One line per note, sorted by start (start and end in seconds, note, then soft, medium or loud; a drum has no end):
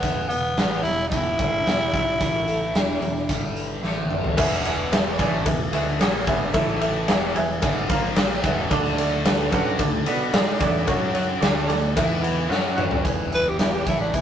0.00 0.28 E1 medium
0.00 0.29 E2 medium
0.00 0.29 B2 medium
0.00 0.30 E3 medium
0.00 0.28 B3 medium
0.00 kick medium
0.00 closed hi-hat medium
0.28 0.56 E1 medium
0.28 0.52 E2 medium
0.28 0.52 B2 medium
0.28 0.85 B3 medium
0.28 closed hi-hat medium
0.57 0.83 A1 medium
0.57 0.84 A2 medium
0.57 0.84 E3 medium
0.57 0.84 A3 medium
0.57 snare loud
0.57 closed hi-hat medium
0.83 1.09 E1 medium
0.83 1.06 E2 medium
0.83 1.07 B2 medium
0.83 1.08 E4 loud
0.83 closed hi-hat medium
0.98 snare soft
1.08 1.37 E1 medium
1.08 1.38 E2 medium
1.08 1.38 B2 medium
1.08 1.38 E3 medium
1.08 3.78 E4 medium
1.08 kick medium
1.08 closed hi-hat medium
1.39 1.65 G1 medium
1.39 1.65 G2 medium
1.39 1.66 D3 medium
1.39 1.66 G3 loud
1.39 kick loud
1.39 closed hi-hat medium
1.65 1.91 E1 medium
1.65 1.88 E2 medium
1.65 1.88 B2 medium
1.65 snare medium
1.65 closed hi-hat medium
1.93 2.19 B1 medium
1.93 2.20 B2 medium
1.93 2.20 F#3 medium
1.93 2.20 B3 medium
1.93 2.08 E5 medium
1.93 kick medium
1.93 closed hi-hat medium
2.09 2.21 D5 medium
2.20 2.71 A1 medium
2.20 2.74 A2 medium
2.20 2.74 E3 medium
2.20 2.75 A3 medium
2.20 2.34 B4 medium
2.20 kick medium
2.20 closed hi-hat medium
2.35 2.48 A#4 medium
2.48 2.61 A4 medium
2.48 closed hi-hat medium
2.62 2.75 E4 medium
2.73 2.99 E1 medium
2.73 3.02 E2 medium
2.73 3.02 B2 medium
2.73 3.02 E3 loud
2.73 3.01 D4 medium
2.73 snare loud
2.73 closed hi-hat medium
3.01 3.27 E1 medium
3.01 3.25 E2 medium
3.01 3.25 B2 medium
3.01 3.29 D4 medium
3.01 closed hi-hat soft
3.16 snare soft
3.29 3.80 G1 medium
3.29 3.83 G2 medium
3.29 3.82 D3 medium
3.29 3.82 G3 medium
3.29 kick medium
3.29 closed hi-hat medium
3.57 closed hi-hat medium
3.83 4.34 A1 medium
3.83 4.37 A2 medium
3.83 4.37 E3 medium
3.83 4.37 A3 medium
3.83 snare soft
3.97 high tom medium
4.10 mid tom medium
4.24 floor tom medium
4.37 5.15 E1 medium
4.37 5.18 E2 medium
4.37 5.17 B2 loud
4.37 5.17 E3 loud
4.37 4.59 G#4 loud
4.37 4.59 B4 loud
4.37 4.60 E5 loud
4.37 kick loud
4.37 crash loud
4.37 cowbell medium
4.53 snare soft
4.65 4.87 G#4 medium
4.65 4.87 B4 medium
4.65 4.87 E5 loud
4.65 ride medium
4.92 5.14 G#4 medium
4.92 5.14 B4 medium
4.92 5.14 E5 loud
4.92 snare loud
4.92 ride medium
4.92 cowbell medium
5.17 5.44 A1 medium
5.17 5.45 A2 loud
5.17 5.45 E3 loud
5.17 5.45 A3 loud
5.17 5.41 G#4 loud
5.17 5.41 B4 medium
5.17 5.41 D5 loud
5.17 kick loud
5.17 ride medium
5.45 5.71 E1 medium
5.45 5.68 E2 medium
5.45 5.68 B2 medium
5.45 5.67 G#4 medium
5.45 5.68 B4 medium
5.45 5.68 E5 medium
5.45 kick loud
5.45 ride loud
5.45 cowbell medium
5.72 5.98 D2 medium
5.72 5.99 D3 medium
5.72 5.99 A3 medium
5.72 6.00 D4 medium
5.72 5.95 G#4 medium
5.72 5.95 B4 medium
5.72 5.95 E5 medium
5.72 ride medium
5.99 6.26 A#1 medium
5.99 6.26 A#2 medium
5.99 6.26 F3 medium
5.99 6.27 A#3 loud
5.99 6.22 G#4 medium
5.99 6.22 B4 medium
5.99 6.23 F#5 medium
5.99 snare loud
5.99 ride medium
5.99 cowbell medium
6.26 6.52 G1 medium
6.26 6.53 G2 medium
6.26 6.53 D3 loud
6.26 6.54 G3 loud
6.26 6.49 G#4 loud
6.26 6.49 B4 medium
6.26 6.49 E5 loud
6.26 kick loud
6.26 ride medium
6.54 7.05 A1 medium
6.54 7.07 A2 medium
6.54 7.08 E3 loud
6.54 7.08 A3 loud
6.54 6.76 E4 loud
6.54 6.76 A4 loud
6.54 6.76 E5 loud
6.54 kick loud
6.54 ride medium
6.54 cowbell medium
6.81 7.03 E4 medium
6.81 7.03 A4 medium
6.81 7.03 E5 loud
6.81 ride medium
7.08 7.34 E1 medium
7.08 7.35 E2 medium
7.08 7.35 B2 loud
7.08 7.35 E3 loud
7.08 7.30 G#4 medium
7.08 7.30 B4 medium
7.08 7.31 E5 loud
7.08 snare loud
7.08 ride loud
7.08 cowbell medium
7.35 7.62 E1 medium
7.35 7.58 E2 medium
7.35 7.58 B2 medium
7.35 7.57 G#4 loud
7.35 7.57 B4 loud
7.35 7.58 E5 loud
7.35 ride medium
7.62 7.88 G1 medium
7.62 7.89 G2 medium
7.62 7.90 D3 medium
7.62 7.90 G3 loud
7.62 7.84 G#4 medium
7.62 7.84 B4 medium
7.62 7.85 E5 medium
7.62 kick loud
7.62 ride loud
7.62 cowbell medium
7.89 8.40 A#1 medium
7.89 8.43 A#2 loud
7.89 8.44 F3 medium
7.89 8.44 A#3 loud
7.89 8.33 F4 medium
7.89 8.33 A#4 medium
7.89 8.33 F5 loud
7.89 kick loud
7.89 ride medium
8.16 snare loud
8.16 ride loud
8.16 cowbell medium
8.44 8.69 E1 loud
8.44 8.70 E2 medium
8.44 8.71 B2 medium
8.44 8.71 E3 loud
8.44 8.66 G#4 medium
8.44 8.66 B4 medium
8.44 8.66 E5 loud
8.44 kick loud
8.44 ride medium
8.71 9.48 D2 loud
8.71 9.52 D3 loud
8.71 9.52 A3 loud
8.71 8.93 D4 loud
8.71 9.53 D4 loud
8.71 8.93 A4 loud
8.71 8.93 D5 loud
8.71 kick loud
8.71 ride loud
8.71 cowbell medium
8.85 snare soft
8.98 9.20 D4 loud
8.98 9.20 A4 medium
8.98 9.20 D5 loud
8.98 ride medium
9.25 9.47 D4 medium
9.25 9.47 A4 medium
9.25 9.47 B4 loud
9.25 snare loud
9.25 ride loud
9.25 cowbell medium
9.52 9.78 F#2 medium
9.52 9.78 F#3 loud
9.52 9.79 C#4 loud
9.52 9.74 D4 loud
9.52 9.79 F#4 loud
9.52 9.74 A4 loud
9.52 9.74 B4 loud
9.52 kick loud
9.52 ride medium
9.79 10.04 D2 medium
9.79 10.01 D3 medium
9.79 10.02 A3 medium
9.79 10.01 D4 medium
9.79 10.01 A4 medium
9.79 10.01 D5 medium
9.79 kick loud
9.79 ride loud
9.79 cowbell medium
10.06 10.32 B2 medium
10.06 10.33 B3 loud
10.06 10.28 D4 medium
10.06 10.33 F#4 medium
10.06 10.28 A4 medium
10.06 10.33 B4 loud
10.06 10.29 D5 medium
10.06 ride medium
10.33 10.59 G#2 medium
10.33 10.60 G#3 medium
10.33 10.55 D4 medium
10.33 10.60 D#4 medium
10.33 10.61 G#4 medium
10.33 10.55 A4 medium
10.33 10.55 D5 loud
10.33 snare loud
10.33 ride medium
10.33 cowbell medium
10.60 10.86 E2 medium
10.60 10.87 E3 medium
10.60 10.87 B3 loud
10.60 10.82 D4 loud
10.60 10.88 E4 medium
10.60 10.82 A4 loud
10.60 10.83 D5 loud
10.60 kick loud
10.60 ride medium
10.87 11.38 F#2 loud
10.87 11.41 F#3 medium
10.87 11.09 C#4 loud
10.87 11.42 C#4 loud
10.87 11.09 F#4 loud
10.87 11.42 F#4 loud
10.87 11.09 C#5 loud
10.87 kick loud
10.87 ride medium
10.87 cowbell medium
11.13 11.36 C#4 medium
11.13 11.36 F#4 medium
11.13 11.36 C#5 loud
11.13 ride medium
11.40 11.67 D2 medium
11.40 11.68 D3 loud
11.40 11.68 A3 medium
11.40 11.63 D4 medium
11.40 11.69 D4 loud
11.40 11.63 A4 medium
11.40 11.63 D5 loud
11.40 snare loud
11.40 ride medium
11.40 cowbell medium
11.67 11.94 D2 medium
11.67 11.91 D3 medium
11.67 11.91 A3 medium
11.67 11.90 D4 loud
11.67 11.90 A4 loud
11.67 11.91 D5 loud
11.67 ride medium
11.95 12.47 E2 medium
11.95 12.50 E3 medium
11.95 12.51 B3 medium
11.95 12.18 E4 medium
11.95 12.51 E4 loud
11.95 12.18 B4 medium
11.95 12.18 E5 medium
11.95 kick loud
11.95 ride loud
11.95 cowbell medium
12.21 12.44 E4 medium
12.21 12.45 B4 medium
12.21 12.45 F#5 medium
12.21 ride medium
12.49 13.01 F#2 medium
12.49 13.04 F#3 medium
12.49 13.04 C#4 medium
12.49 12.72 F#4 medium
12.49 13.05 F#4 medium
12.49 12.72 C#5 medium
12.49 12.72 F#5 medium
12.49 snare medium
12.49 cowbell medium
12.75 12.98 F#4 loud
12.75 12.99 C#5 loud
12.75 12.99 F#5 loud
12.75 mid tom medium
12.91 floor tom medium
13.03 13.83 E1 medium
13.03 13.86 E2 medium
13.03 13.85 B2 loud
13.03 13.84 E3 medium
13.03 13.26 E4 medium
13.03 13.26 G#4 medium
13.03 13.26 B4 loud
13.03 kick loud
13.03 closed hi-hat medium
13.31 13.53 E4 medium
13.31 13.53 G#4 medium
13.31 13.54 B4 medium
13.31 13.50 B4 medium
13.31 closed hi-hat medium
13.48 13.59 G4 medium
13.58 13.81 E4 medium
13.58 13.73 E4 medium
13.58 13.81 G#4 medium
13.58 13.81 B4 medium
13.58 snare loud
13.58 closed hi-hat medium
13.71 13.85 G4 medium
13.85 14.12 A1 medium
13.85 14.12 A2 medium
13.85 14.13 E3 medium
13.85 14.13 A3 loud
13.85 14.08 E4 medium
13.85 14.00 E4 medium
13.85 14.08 G#4 medium
13.85 14.08 B4 medium
13.85 kick medium
13.85 closed hi-hat medium
14.01 14.16 D4 medium
14.13 14.21 E1 medium
14.13 14.21 E2 soft
14.13 14.21 B2 medium
14.13 14.21 E4 medium
14.13 14.21 G#4 medium
14.13 14.21 B4 medium
14.13 kick medium
14.13 closed hi-hat medium